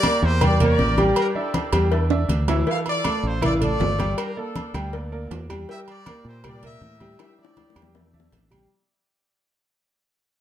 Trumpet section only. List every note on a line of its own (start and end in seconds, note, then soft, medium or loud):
0.00 0.42 G4 medium
0.00 0.42 A#4 medium
0.00 0.20 D5 loud
0.24 0.42 C5 loud
0.43 0.60 G4 medium
0.43 0.60 A#4 medium
0.43 0.61 D5 loud
0.62 1.13 G4 medium
0.62 1.13 A#4 medium
0.62 1.14 D5 loud
1.18 1.36 D4 medium
1.18 1.89 G4 medium
1.18 1.27 A#4 medium
1.37 2.08 D4 medium
1.37 2.08 E4 medium
1.37 1.89 A4 medium
2.69 2.87 A4 medium
2.69 2.77 F5 loud
2.88 3.43 F4 medium
2.88 3.43 A4 medium
2.88 3.22 D5 loud
3.25 3.43 C5 loud
3.44 3.62 F4 medium
3.44 3.62 A4 medium
3.44 3.52 D5 loud
3.63 4.15 F4 medium
3.63 4.15 A4 medium
3.63 4.15 D5 loud
4.19 4.37 D4 medium
4.19 4.37 A#4 medium
4.38 5.09 D4 medium
4.38 4.94 A4 medium
5.70 5.88 G4 medium
5.70 5.88 A#4 medium
5.70 5.78 E5 loud
5.89 6.44 G4 medium
5.89 6.44 A#4 medium
5.89 6.24 D5 loud
6.27 6.45 C5 loud
6.45 6.63 G4 medium
6.45 6.63 A#4 medium
6.45 6.64 D5 loud
6.64 7.16 G4 medium
6.64 7.16 A#4 medium
6.64 7.17 E5 loud
7.20 7.38 G4 medium
7.20 7.38 E5 loud
7.39 8.10 G4 medium
7.39 7.92 D5 loud